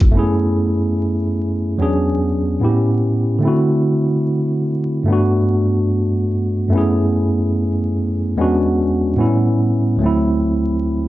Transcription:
0.00 0.14 F1 medium
0.00 0.11 G#3 medium
0.00 0.10 A3 medium
0.00 0.11 E4 medium
0.00 0.16 F#4 medium
0.00 kick medium
0.00 closed hi-hat soft
0.10 1.73 F#2 medium
0.10 1.74 A3 medium
0.10 1.75 B3 medium
0.15 1.76 C#4 medium
0.15 1.77 E4 medium
0.15 1.78 G#4 medium
1.78 2.61 E2 medium
1.78 2.61 F#3 medium
1.78 2.60 B3 medium
1.78 2.62 C#4 medium
1.78 2.63 D4 medium
1.82 2.63 G#4 medium
2.60 3.43 A2 medium
2.60 3.43 B3 medium
2.60 2.70 C4 soft
2.60 3.44 E4 medium
2.65 3.45 G4 medium
2.69 3.47 C#4 medium
3.38 5.02 D3 medium
3.38 5.03 A3 medium
3.43 5.04 C4 medium
3.43 5.06 E4 medium
3.48 5.07 F#4 medium
5.03 6.67 G2 medium
5.03 6.68 A3 medium
5.08 6.69 B3 medium
5.08 6.70 D4 medium
5.12 6.71 F#4 medium
6.68 8.31 F#2 medium
6.68 8.32 A3 medium
6.68 8.33 B3 medium
6.74 8.34 C#4 medium
6.74 8.35 E4 medium
6.74 8.36 G#4 medium
8.36 9.19 E2 medium
8.36 9.19 G#3 medium
8.36 9.17 B3 medium
8.36 9.18 C#4 medium
8.36 9.21 D4 medium
8.41 9.21 F#4 medium
9.16 10.00 A2 medium
9.16 10.00 G3 medium
9.16 10.01 B3 medium
9.16 10.01 C#4 medium
9.20 10.02 E4 medium
9.96 11.08 D2 medium
9.96 11.08 F#3 medium
10.01 11.08 A3 medium
10.01 11.08 C4 medium
10.06 11.08 E4 medium

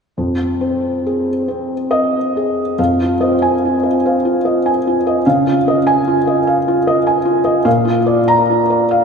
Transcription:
0.18 2.75 F2 soft
0.61 1.29 C4 soft
1.06 1.73 G#4 soft
1.48 2.17 C4 soft
1.91 2.62 D#5 medium
2.37 2.80 G#4 soft
2.79 5.21 F2 soft
2.79 3.12 F5 soft
3.02 3.34 F4 soft
3.21 3.87 C4 soft
3.21 3.54 D#5 soft
3.42 3.75 G#5 medium
3.65 3.96 F4 soft
3.83 4.15 D#5 soft
4.06 4.69 C4 soft
4.06 4.37 F5 soft
4.25 4.56 F4 soft
4.45 4.77 D#5 soft
4.66 4.97 G#5 soft
4.87 5.18 F4 soft
5.07 5.26 D#5 soft
5.26 7.63 C#3 medium
5.26 5.58 F5 medium
5.47 5.78 F4 soft
5.68 5.99 D#5 medium
5.87 6.18 G#5 medium
6.07 6.39 F4 soft
6.27 6.59 D#5 soft
6.47 6.79 F5 medium
6.68 6.99 F4 medium
6.87 7.18 D#5 medium
7.07 7.38 G#5 medium
7.25 7.57 F4 soft
7.45 7.65 D#5 medium
7.65 9.04 A#2 medium
7.65 7.98 F5 medium
7.85 8.19 F4 soft
8.06 8.40 D5 medium
8.28 8.61 A#5 medium
8.50 8.83 F4 soft
8.70 9.03 D5 soft
8.91 9.04 F5 medium

